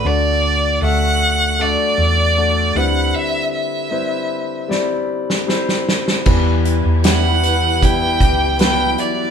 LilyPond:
<<
  \new Staff \with { instrumentName = "Violin" } { \time 4/4 \key e \dorian \tempo 4 = 77 d''4 fis''4 d''4. fis''8 | e''8 e''4. r2 | r4 fis''4 g''4 g''8 d''8 | }
  \new Staff \with { instrumentName = "Clean electric guitar" } { \time 4/4 \key e \dorian r1 | r1 | e8 e'8 g'8 b'8 e'8 g'8 b'8 e'8 | }
  \new Staff \with { instrumentName = "String section" } { \time 4/4 \key e \dorian r1 | r1 | <e e' g' b'>1 | }
  \new Staff \with { instrumentName = "Grand piano" } { \time 4/4 \key e \dorian <a d' fis' d''>4 <a d' fis' e''>4 <a d' fis' d''>4 <a d' fis' d''>8 <g c' e' b'>8~ | <g c' e' b'>4 <g c' e' b'>4 <g c' e' d''>4 <g c' e' c''>4 | <g b e' b'>4 <g b e' b'>4 <g b e' b'>4 <fis g b e' b'>4 | }
  \new Staff \with { instrumentName = "Grand piano" } { \clef bass \time 4/4 \key e \dorian d4. r2 d8~ | d4 r2. | e4. r2 r8 | }
  \new Staff \with { instrumentName = "Fingered electric bass" } { \clef bass \time 4/4 \key e \dorian d,4 d,4~ d,16 r16 e,4 d,8 | r1 | e,8. e,4.~ e,16 cis,4 r8 | }
  \new DrumStaff \with { instrumentName = "Drums" } \drummode { \time 4/4 r4 r4 r4 r4 | r4 r4 sn8. sn16 sn16 sn16 sn16 sn16 | <cymc bd>8 hh8 <hh sn>8 hh8 <hh bd>8 <hh bd>8 <hh sn>8 hh8 | }
>>